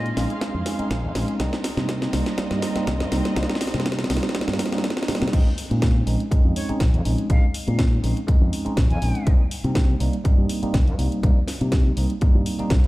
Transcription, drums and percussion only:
0.06 closed hi-hat soft
0.17 snare medium
0.17 open hi-hat loud
0.30 closed hi-hat soft
0.41 kick loud
0.41 snare medium
0.41 closed hi-hat medium
0.66 snare medium
0.66 open hi-hat loud
0.79 closed hi-hat medium
0.91 kick loud
0.91 snare medium
0.91 closed hi-hat medium
1.15 snare medium
1.15 open hi-hat loud
1.28 closed hi-hat medium
1.40 kick loud
1.40 snare medium
1.40 closed hi-hat medium
1.53 snare medium
1.53 closed hi-hat soft
1.64 snare medium
1.64 open hi-hat loud
1.77 snare medium
1.77 closed hi-hat medium
1.89 kick loud
1.89 snare medium
1.89 closed hi-hat medium
2.02 snare medium
2.02 closed hi-hat soft
2.13 snare medium
2.13 open hi-hat loud
2.26 snare medium
2.26 closed hi-hat medium
2.38 kick loud
2.38 snare loud
2.38 closed hi-hat medium
2.51 snare medium
2.62 snare medium
2.62 open hi-hat loud
2.76 snare medium
2.76 closed hi-hat medium
2.87 kick loud
2.87 snare loud
2.87 closed hi-hat medium
3.00 snare medium
3.12 snare loud
3.12 open hi-hat loud
3.25 snare medium
3.25 closed hi-hat medium
3.36 kick loud
3.36 snare loud
3.36 closed hi-hat medium
3.43 snare medium
3.49 snare medium
3.49 closed hi-hat soft
3.55 snare medium
3.61 snare loud
3.61 open hi-hat loud
3.67 snare medium
3.74 snare medium
3.74 closed hi-hat medium
3.80 snare medium
3.86 kick loud
3.86 snare loud
3.86 closed hi-hat medium
3.92 snare medium
3.99 snare medium
3.99 closed hi-hat soft
4.04 snare medium
4.10 snare loud
4.10 open hi-hat loud
4.17 snare medium
4.23 snare medium
4.23 closed hi-hat medium
4.29 snare medium
4.35 kick loud
4.35 snare loud
4.35 closed hi-hat medium
4.41 snare loud
4.48 snare medium
4.48 closed hi-hat soft
4.53 snare medium
4.59 snare loud
4.59 open hi-hat loud
4.66 snare medium
4.72 snare loud
4.72 closed hi-hat medium
4.78 snare medium
4.84 kick loud
4.84 snare loud
4.84 closed hi-hat medium
4.90 snare medium
4.97 snare loud
4.97 closed hi-hat soft
5.03 snare loud
5.08 snare loud
5.08 open hi-hat loud
5.15 snare loud
5.22 snare medium
5.22 closed hi-hat medium
5.28 snare loud
5.33 kick loud
5.33 closed hi-hat medium
5.33 crash loud
5.58 open hi-hat loud
5.71 closed hi-hat medium
5.82 kick loud
5.82 snare loud
5.82 closed hi-hat medium
6.07 open hi-hat loud
6.20 closed hi-hat medium
6.31 kick loud
6.31 closed hi-hat medium
6.56 open hi-hat loud
6.69 closed hi-hat medium
6.80 kick loud
6.80 snare loud
6.80 closed hi-hat medium
6.94 closed hi-hat soft
7.05 open hi-hat loud
7.18 closed hi-hat medium
7.30 kick loud
7.30 closed hi-hat medium
7.54 open hi-hat loud
7.68 closed hi-hat medium
7.79 kick loud
7.79 snare loud
7.79 closed hi-hat medium
8.04 open hi-hat loud
8.17 closed hi-hat medium
8.28 kick loud
8.28 closed hi-hat medium
8.53 open hi-hat loud
8.66 closed hi-hat medium
8.77 kick loud
8.77 snare loud
8.77 closed hi-hat medium
8.90 closed hi-hat soft
9.02 open hi-hat loud
9.15 closed hi-hat medium
9.27 kick loud
9.27 closed hi-hat medium
9.51 open hi-hat loud
9.64 closed hi-hat soft
9.75 kick loud
9.75 snare loud
9.75 closed hi-hat medium
10.00 open hi-hat loud
10.13 closed hi-hat medium
10.25 kick loud
10.25 closed hi-hat medium
10.49 open hi-hat loud
10.63 closed hi-hat medium
10.74 kick loud
10.74 snare loud
10.74 closed hi-hat medium
10.88 closed hi-hat soft
10.99 open hi-hat loud
11.12 closed hi-hat soft
11.23 kick loud
11.23 closed hi-hat medium
11.48 snare medium
11.48 open hi-hat loud
11.61 closed hi-hat medium
11.72 kick loud
11.72 snare loud
11.72 closed hi-hat medium
11.97 open hi-hat loud
12.10 closed hi-hat soft
12.21 kick loud
12.21 closed hi-hat medium
12.46 open hi-hat loud
12.59 closed hi-hat soft
12.70 kick loud
12.70 snare loud
12.70 closed hi-hat medium
12.84 closed hi-hat soft

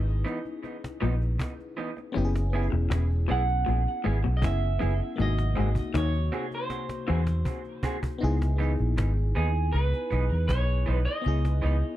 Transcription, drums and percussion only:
0.08 cajon slap soft
0.26 cajon slap soft
0.45 cajon slap soft
0.64 cajon slap medium
0.84 cajon slap medium
1.02 cajon slap soft
1.21 cajon slap soft
1.39 cajon bass loud
1.39 cajon slap loud
1.59 cajon slap soft
1.78 cajon slap soft
1.97 cajon slap soft
2.15 cajon slap soft
2.36 cajon slap medium
2.53 cajon slap soft
2.73 cajon slap soft
2.91 cajon bass loud
2.91 cajon slap loud
3.11 cajon slap soft
3.29 cajon slap soft
3.48 cajon slap soft
3.67 cajon slap medium
3.86 cajon slap soft
4.04 cajon slap soft
4.24 cajon slap soft
4.42 cajon bass loud
4.42 cajon slap loud
4.62 cajon slap soft
4.81 cajon slap soft
5.00 cajon slap soft
5.18 cajon slap medium
5.38 cajon slap medium
5.56 cajon slap soft
5.75 cajon bass medium
5.94 cajon bass loud
5.94 cajon slap loud
6.14 cajon slap soft
6.32 cajon slap soft
6.51 cajon slap soft
6.70 cajon slap medium
6.89 cajon slap medium
7.08 cajon slap soft
7.27 cajon slap medium
7.45 cajon bass loud
7.64 cajon slap soft
7.83 cajon bass loud
8.03 cajon bass medium
8.21 cajon slap medium
8.42 cajon slap medium
8.59 cajon slap soft
8.78 cajon slap soft
8.98 cajon bass loud
8.98 cajon slap loud
9.17 cajon slap soft
9.36 cajon slap soft
9.55 cajon slap soft
9.74 cajon slap medium
9.93 cajon slap soft
10.11 cajon slap soft
10.30 cajon slap soft
10.49 cajon bass loud
10.49 cajon slap loud
10.69 cajon slap soft
10.87 cajon slap soft
11.06 cajon slap soft
11.25 cajon slap soft
11.45 cajon slap medium
11.62 cajon slap soft
11.82 cajon slap soft

